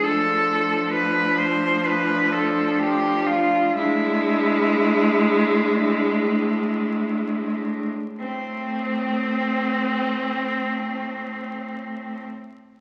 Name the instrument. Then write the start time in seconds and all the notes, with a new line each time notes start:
cello
0.03 A2 F3 D4 A4
0.92 B4
1.38 C5
1.85 B4
2.32 A4
2.79 G4
3.27 F4
3.76 A2 G#3 D4 E4
8.19 A2 A3 C4